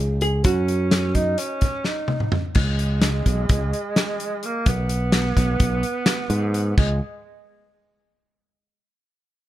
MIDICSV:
0, 0, Header, 1, 5, 480
1, 0, Start_track
1, 0, Tempo, 468384
1, 458, Time_signature, 9, 3, 24, 8
1, 9719, End_track
2, 0, Start_track
2, 0, Title_t, "Hollow-body jazz guitar"
2, 0, Program_c, 0, 26
2, 0, Note_on_c, 0, 68, 69
2, 212, Note_off_c, 0, 68, 0
2, 225, Note_on_c, 0, 68, 68
2, 460, Note_off_c, 0, 68, 0
2, 464, Note_on_c, 0, 66, 64
2, 2102, Note_off_c, 0, 66, 0
2, 9719, End_track
3, 0, Start_track
3, 0, Title_t, "Alto saxophone"
3, 0, Program_c, 1, 65
3, 0, Note_on_c, 1, 63, 74
3, 182, Note_off_c, 1, 63, 0
3, 451, Note_on_c, 1, 61, 90
3, 1177, Note_on_c, 1, 63, 98
3, 1193, Note_off_c, 1, 61, 0
3, 1418, Note_on_c, 1, 61, 94
3, 1434, Note_off_c, 1, 63, 0
3, 1898, Note_on_c, 1, 63, 76
3, 1914, Note_off_c, 1, 61, 0
3, 2380, Note_off_c, 1, 63, 0
3, 2626, Note_on_c, 1, 56, 82
3, 4561, Note_on_c, 1, 58, 94
3, 4576, Note_off_c, 1, 56, 0
3, 4791, Note_off_c, 1, 58, 0
3, 4799, Note_on_c, 1, 59, 98
3, 6907, Note_off_c, 1, 59, 0
3, 6944, Note_on_c, 1, 56, 73
3, 7164, Note_off_c, 1, 56, 0
3, 9719, End_track
4, 0, Start_track
4, 0, Title_t, "Fretless electric bass"
4, 0, Program_c, 2, 35
4, 0, Note_on_c, 2, 37, 84
4, 426, Note_off_c, 2, 37, 0
4, 458, Note_on_c, 2, 42, 76
4, 1379, Note_off_c, 2, 42, 0
4, 2623, Note_on_c, 2, 37, 82
4, 3301, Note_off_c, 2, 37, 0
4, 3340, Note_on_c, 2, 35, 81
4, 3563, Note_off_c, 2, 35, 0
4, 3583, Note_on_c, 2, 37, 79
4, 3805, Note_off_c, 2, 37, 0
4, 4783, Note_on_c, 2, 35, 82
4, 5461, Note_off_c, 2, 35, 0
4, 5501, Note_on_c, 2, 35, 84
4, 5723, Note_off_c, 2, 35, 0
4, 5744, Note_on_c, 2, 35, 85
4, 5965, Note_off_c, 2, 35, 0
4, 6453, Note_on_c, 2, 44, 97
4, 6901, Note_off_c, 2, 44, 0
4, 6945, Note_on_c, 2, 37, 84
4, 7165, Note_off_c, 2, 37, 0
4, 9719, End_track
5, 0, Start_track
5, 0, Title_t, "Drums"
5, 216, Note_on_c, 9, 42, 58
5, 318, Note_off_c, 9, 42, 0
5, 452, Note_on_c, 9, 42, 77
5, 458, Note_on_c, 9, 36, 101
5, 555, Note_off_c, 9, 42, 0
5, 560, Note_off_c, 9, 36, 0
5, 701, Note_on_c, 9, 42, 63
5, 803, Note_off_c, 9, 42, 0
5, 937, Note_on_c, 9, 38, 89
5, 937, Note_on_c, 9, 42, 75
5, 1039, Note_off_c, 9, 38, 0
5, 1039, Note_off_c, 9, 42, 0
5, 1176, Note_on_c, 9, 42, 61
5, 1179, Note_on_c, 9, 36, 66
5, 1278, Note_off_c, 9, 42, 0
5, 1281, Note_off_c, 9, 36, 0
5, 1413, Note_on_c, 9, 42, 78
5, 1516, Note_off_c, 9, 42, 0
5, 1651, Note_on_c, 9, 42, 52
5, 1659, Note_on_c, 9, 36, 75
5, 1753, Note_off_c, 9, 42, 0
5, 1762, Note_off_c, 9, 36, 0
5, 1890, Note_on_c, 9, 38, 57
5, 1993, Note_off_c, 9, 38, 0
5, 2130, Note_on_c, 9, 48, 67
5, 2233, Note_off_c, 9, 48, 0
5, 2257, Note_on_c, 9, 47, 57
5, 2359, Note_off_c, 9, 47, 0
5, 2375, Note_on_c, 9, 45, 85
5, 2478, Note_off_c, 9, 45, 0
5, 2609, Note_on_c, 9, 49, 92
5, 2620, Note_on_c, 9, 36, 96
5, 2712, Note_off_c, 9, 49, 0
5, 2722, Note_off_c, 9, 36, 0
5, 2859, Note_on_c, 9, 42, 53
5, 2962, Note_off_c, 9, 42, 0
5, 3090, Note_on_c, 9, 38, 101
5, 3090, Note_on_c, 9, 42, 71
5, 3193, Note_off_c, 9, 38, 0
5, 3193, Note_off_c, 9, 42, 0
5, 3340, Note_on_c, 9, 36, 61
5, 3340, Note_on_c, 9, 42, 64
5, 3443, Note_off_c, 9, 36, 0
5, 3443, Note_off_c, 9, 42, 0
5, 3579, Note_on_c, 9, 42, 78
5, 3583, Note_on_c, 9, 36, 105
5, 3682, Note_off_c, 9, 42, 0
5, 3685, Note_off_c, 9, 36, 0
5, 3827, Note_on_c, 9, 42, 58
5, 3929, Note_off_c, 9, 42, 0
5, 4061, Note_on_c, 9, 38, 96
5, 4061, Note_on_c, 9, 42, 78
5, 4163, Note_off_c, 9, 38, 0
5, 4163, Note_off_c, 9, 42, 0
5, 4304, Note_on_c, 9, 42, 58
5, 4406, Note_off_c, 9, 42, 0
5, 4538, Note_on_c, 9, 42, 58
5, 4641, Note_off_c, 9, 42, 0
5, 4776, Note_on_c, 9, 42, 77
5, 4779, Note_on_c, 9, 36, 106
5, 4878, Note_off_c, 9, 42, 0
5, 4882, Note_off_c, 9, 36, 0
5, 5015, Note_on_c, 9, 42, 63
5, 5118, Note_off_c, 9, 42, 0
5, 5251, Note_on_c, 9, 38, 95
5, 5251, Note_on_c, 9, 42, 71
5, 5353, Note_off_c, 9, 38, 0
5, 5353, Note_off_c, 9, 42, 0
5, 5500, Note_on_c, 9, 36, 72
5, 5501, Note_on_c, 9, 38, 33
5, 5501, Note_on_c, 9, 42, 62
5, 5602, Note_off_c, 9, 36, 0
5, 5603, Note_off_c, 9, 38, 0
5, 5603, Note_off_c, 9, 42, 0
5, 5736, Note_on_c, 9, 42, 77
5, 5740, Note_on_c, 9, 36, 106
5, 5839, Note_off_c, 9, 42, 0
5, 5842, Note_off_c, 9, 36, 0
5, 5976, Note_on_c, 9, 42, 54
5, 6078, Note_off_c, 9, 42, 0
5, 6209, Note_on_c, 9, 38, 104
5, 6209, Note_on_c, 9, 42, 75
5, 6312, Note_off_c, 9, 38, 0
5, 6312, Note_off_c, 9, 42, 0
5, 6455, Note_on_c, 9, 42, 60
5, 6557, Note_off_c, 9, 42, 0
5, 6705, Note_on_c, 9, 42, 57
5, 6808, Note_off_c, 9, 42, 0
5, 6943, Note_on_c, 9, 49, 86
5, 6945, Note_on_c, 9, 36, 102
5, 7045, Note_off_c, 9, 49, 0
5, 7047, Note_off_c, 9, 36, 0
5, 9719, End_track
0, 0, End_of_file